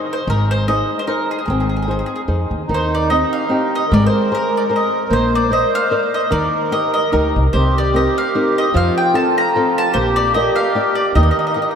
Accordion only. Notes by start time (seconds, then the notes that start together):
2.67 D#4
3.88 A#4
5.09 C5
5.49 C5
6.30 A#4
7.53 G4
8.73 F4
9.91 G4
11.13 D#4